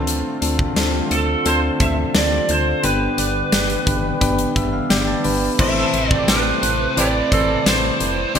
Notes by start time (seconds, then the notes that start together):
Already playing: D2 D3 A3 C4 D4 F4 A4
0.07 closed hi-hat
0.41 D2 C4 D4 F4 A4, closed hi-hat
0.59 kick
0.76 D2 C4 D4 F4 A4, snare, closed hi-hat
1.11 D2 C4 D4 F4 A4, closed hi-hat
1.45 D2 C4 D4 F4 A4 C5, closed hi-hat
1.80 D2 C4 D4 F4 A4 E5, kick, closed hi-hat
2.14 D2 C4 D4 F4 A4 D5, snare, closed hi-hat
2.48 D2 C4 D4 F4 A4 C5, closed hi-hat
2.83 G1 G2 G3 B3 D4 G4 B4, closed hi-hat
3.17 G1 B3 D4 G4 D5, closed hi-hat
3.52 G1 B3 D4 G4 D5, snare, closed hi-hat, tambourine
3.70 closed hi-hat
3.86 G1 B3 D4 G4 B4, kick, closed hi-hat
4.21 G1 B3 D4 G4 B4, kick, closed hi-hat
4.38 closed hi-hat
4.55 G1 B3 D4 G4 B4 E5, kick, closed hi-hat
4.73 F5
4.89 G1 B3 D4 G4 D5 G5, snare, closed hi-hat, tambourine
5.07 A5
5.24 G1 B3 D4 G4 B4, open hi-hat
5.59 A1 A2 C3 E3 A3 C4 E4 A4 B4 C5 E5, kick, crash
5.77 E3 C4 A4
5.93 A1 E3 A3 C4 E4 A4 B4 C5, closed hi-hat
6.09 E3 C4 G4 D5, kick
6.28 A1 C4 E4 A4 B4 C5, snare, closed hi-hat, tambourine
6.62 A1 C4 E4 A4 B4 C5, closed hi-hat
6.96 A1 A2 E3 G3 A3 C4 E4 G4 A4 B4 D5, closed hi-hat
7.31 A1 E3 C4 E4 A4 B4 C5, kick, closed hi-hat
7.65 A1 A2 E3 A3 C4 E4 A4 B4 C5 D5, snare, closed hi-hat, tambourine
8.00 F1 C4 E4 A4 B4 D5, closed hi-hat
8.34 G1 G2 D3 G3 C4 D4 G4 C5 D5, closed hi-hat